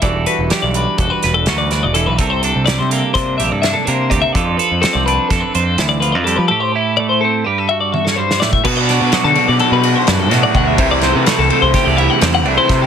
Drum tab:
CC |------------------|------------------|------------------|------------------|
RD |------------------|------------------|------------------|------------------|
HH |x-x-x-x-x-x-x-x-x-|x-x-x-x-x-x-x-x-x-|x-x-x-x-x-x-x-x-x-|------------------|
SD |----o-----o-o-o---|----o---o---o-----|----o---o---o-----|-------------o-oo-|
T1 |------------------|------------------|------------------|------------o-----|
BD |o-------o---------|o-------o-------o-|o-------o---------|-----------------o|

CC |x-----------------|------------------|
RD |--x-x-x-x-x-x-x-x-|x-x-x-x-x-x-x-x-x-|
HH |------------------|------------------|
SD |--o-o-------o-o---|--o-o---o---o---o-|
T1 |------------------|------------------|
BD |o---------------o-|o-------o-------o-|